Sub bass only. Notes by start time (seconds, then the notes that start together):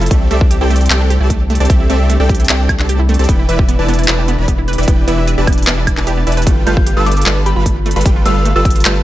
0.11 C2
0.31 C2
0.61 C2
0.90 C2
1.20 C2
1.60 C2
1.70 C2
1.90 C2
2.20 C2
2.49 C2
2.79 C2
3.19 C2
3.29 E1
3.49 E1
3.79 E1
4.08 E1
4.38 E1
4.78 E1
4.88 E1
5.08 E1
5.38 E1
5.67 E1
5.97 E1
6.27 E1
6.47 G1
6.67 G1
6.97 G1
7.26 G1
7.56 G1
7.96 G1
8.06 G1
8.26 G1
8.56 G1
8.85 G1